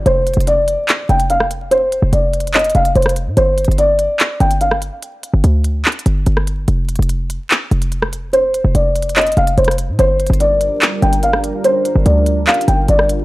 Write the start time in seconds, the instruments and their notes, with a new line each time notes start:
0.06 808-style bass F1, felt piano C5, closed hi-hat
0.27 closed hi-hat
0.34 808-style bass F1, closed hi-hat
0.40 closed hi-hat
0.47 felt piano D5, closed hi-hat
0.68 closed hi-hat
0.89 clap, closed hi-hat
1.09 808-style bass F1, felt piano G5, closed hi-hat
1.20 closed hi-hat
1.30 felt piano F5, closed hi-hat
1.40 cross-stick
1.51 closed hi-hat
1.71 felt piano C5, closed hi-hat
1.92 closed hi-hat
2.02 808-style bass F1
2.13 808-style bass F1, felt piano D5, closed hi-hat
2.33 closed hi-hat
2.40 closed hi-hat
2.47 closed hi-hat
2.54 felt piano D#5, clap, closed hi-hat
2.59 closed hi-hat
2.64 closed hi-hat
2.70 closed hi-hat
2.75 808-style bass F1, felt piano F5, closed hi-hat
2.85 closed hi-hat
2.95 808-style bass F1, felt piano C5, closed hi-hat
3.02 cross-stick, closed hi-hat
3.09 closed hi-hat
3.16 closed hi-hat
3.27 808-style bass A2
3.37 808-style bass G1, felt piano C5, closed hi-hat
3.58 closed hi-hat
3.64 808-style bass G1, closed hi-hat
3.71 closed hi-hat
3.78 felt piano D5, closed hi-hat
3.99 closed hi-hat
4.20 clap, closed hi-hat
4.40 808-style bass G1, felt piano G5, closed hi-hat
4.51 closed hi-hat
4.61 felt piano F5, closed hi-hat
4.71 cross-stick
4.82 closed hi-hat
5.02 closed hi-hat
5.23 closed hi-hat
5.33 808-style bass G1
5.44 808-style bass D2, closed hi-hat
5.64 closed hi-hat
5.85 clap, closed hi-hat
5.92 closed hi-hat
5.99 closed hi-hat
6.06 808-style bass G1, closed hi-hat
6.26 808-style bass G1, closed hi-hat
6.37 cross-stick
6.47 closed hi-hat
6.68 808-style bass F1, closed hi-hat
6.89 closed hi-hat
6.96 808-style bass F1, closed hi-hat
7.02 closed hi-hat
7.09 closed hi-hat
7.30 closed hi-hat
7.51 clap, closed hi-hat
7.71 808-style bass F1, closed hi-hat
7.82 closed hi-hat
7.92 closed hi-hat
8.02 cross-stick
8.13 closed hi-hat
8.33 felt piano C5, closed hi-hat
8.54 closed hi-hat
8.64 808-style bass F1
8.75 808-style bass F1, felt piano D5, closed hi-hat
8.96 closed hi-hat
9.02 closed hi-hat
9.09 closed hi-hat
9.16 felt piano D#5, clap, closed hi-hat
9.21 closed hi-hat
9.27 closed hi-hat
9.32 closed hi-hat
9.37 808-style bass F1, felt piano F5, closed hi-hat
9.47 closed hi-hat
9.57 808-style bass F1, felt piano C5, closed hi-hat
9.64 cross-stick, closed hi-hat
9.71 closed hi-hat
9.78 closed hi-hat
9.89 808-style bass A2
9.99 808-style bass G1, analog synth pad G3 D4 F4 A#4, felt piano C5, closed hi-hat
10.20 closed hi-hat
10.27 808-style bass G1, closed hi-hat
10.33 closed hi-hat
10.40 felt piano D5, closed hi-hat
10.61 closed hi-hat
10.82 clap, closed hi-hat
11.02 808-style bass G1, felt piano G5, closed hi-hat
11.13 closed hi-hat
11.23 felt piano F5, closed hi-hat
11.33 cross-stick
11.44 closed hi-hat
11.64 felt piano C5, closed hi-hat
11.85 closed hi-hat
11.96 808-style bass G1
12.06 808-style bass D2, felt piano D5, closed hi-hat
12.26 closed hi-hat
12.47 felt piano F5, clap, closed hi-hat
12.54 closed hi-hat
12.61 closed hi-hat
12.68 808-style bass G1, felt piano G5, closed hi-hat
12.88 808-style bass G1, felt piano D5, closed hi-hat
12.99 cross-stick
13.09 closed hi-hat